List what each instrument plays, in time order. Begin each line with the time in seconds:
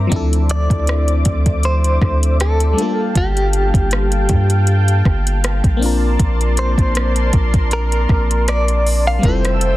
Already playing: fm electric piano G3 C4 D4 E4 A#4, analog synth pad C5 E5 A#5 D6
0.07 fm electric piano F3 C4
0.12 808-style bass D2, fm electric piano D4 E4, analog synth pad C5 D5 E5 D6, kick, closed hi-hat
0.16 fm electric piano A4
0.33 closed hi-hat
0.49 clean electric guitar D5, closed hi-hat
0.70 808-style bass D2, kick, closed hi-hat
0.87 cross-stick, closed hi-hat
1.08 closed hi-hat
1.25 808-style bass D2, kick, closed hi-hat
1.46 kick, closed hi-hat
1.63 clean electric guitar C5, closed hi-hat
1.84 closed hi-hat
2.02 808-style bass D2, kick, cross-stick
2.23 closed hi-hat
2.40 clean electric guitar A4, cross-stick, closed hi-hat
2.60 closed hi-hat
2.73 fm electric piano G3 A3
2.77 fm electric piano D4 F4, analog synth pad F5 G5 A5, closed hi-hat
2.82 fm electric piano A#3 A4
3.15 808-style bass G1, clean electric guitar G4, kick, closed hi-hat
3.37 closed hi-hat
3.53 closed hi-hat
3.74 808-style bass G1, kick, closed hi-hat
3.91 cross-stick, closed hi-hat
4.12 closed hi-hat
4.29 808-style bass G2, kick, closed hi-hat
4.50 closed hi-hat
4.67 closed hi-hat
4.88 closed hi-hat
5.05 808-style bass G1, kick, cross-stick
5.27 closed hi-hat
5.44 cross-stick, closed hi-hat
5.64 808-style bass A#1, kick, closed hi-hat
5.77 fm electric piano A#3 C4
5.81 fm electric piano D4 F4, analog synth pad A#4 D5 A5 C6, open hi-hat
5.86 fm electric piano A#4
6.19 808-style bass A#1, kick, closed hi-hat
6.41 closed hi-hat
6.57 clean electric guitar C5, closed hi-hat
6.78 808-style bass A#1, kick, closed hi-hat
6.95 cross-stick, closed hi-hat
7.16 closed hi-hat
7.33 808-style bass A#1, kick, closed hi-hat
7.54 kick, closed hi-hat
7.71 clean electric guitar A#4, closed hi-hat
7.92 closed hi-hat
8.09 808-style bass A#1, kick, cross-stick
8.31 closed hi-hat
8.48 clean electric guitar D5, cross-stick, closed hi-hat
8.68 closed hi-hat
8.86 open hi-hat
9.07 clean electric guitar F5
9.19 fm electric piano G3 C4
9.23 808-style bass F1, fm electric piano E4 F4, analog synth pad A4 E5 G5 E6, clean electric guitar C5, kick, closed hi-hat
9.28 fm electric piano A4
9.45 cross-stick, closed hi-hat
9.61 closed hi-hat